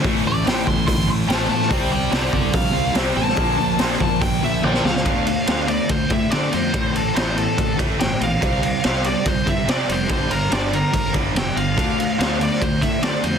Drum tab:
RD |----------------|----------------|----------------|x-x-x-x-x-x-x-x-|
HH |o---o---o---o---|o---o---o---o---|o---o---o-------|----------------|
SD |----o-------o--o|----o-------o--o|----o--------ooo|----o-------o---|
T1 |----------------|----------------|------------o---|----------------|
BD |o-----o-o-------|o-----o-o-------|o-----o-o-------|o-------o-o-----|

RD |x-x-x-x-x-x-x-x-|x-x-x-x-x-x-x-x-|x-x-x-x-x-x-x-x-|x-x-x-x-x-x-x-x-|
HH |----------------|----------------|----------------|----------------|
SD |----o-------o---|----o-------o---|----o-------o---|----o--o----o---|
T1 |----------------|----------------|----------------|----------------|
BD |o-------o-o-----|o-------o-o-----|o-------o-o-----|o-------o-o-----|